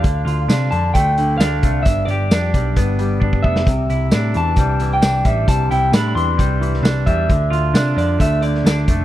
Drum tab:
HH |x-x-x-x-x-x-x-x-|x-x-x-x-x-x-----|x-x-x-x-x-x-x-x-|x-x-x-x-x-x-x-x-|
TB |----x-------x---|----x-----------|----x-------x---|----x-------x---|
SD |----o-------o---|----o----------o|----o-------o---|----o------oo---|
BD |o-------o-----o-|o-----o-o---ooo-|o-------o-----o-|o-------o-----o-|

HH |x-x-x-x-x-x-x-x-|
TB |----x-------x---|
SD |----o------oo---|
BD |o-------o-----o-|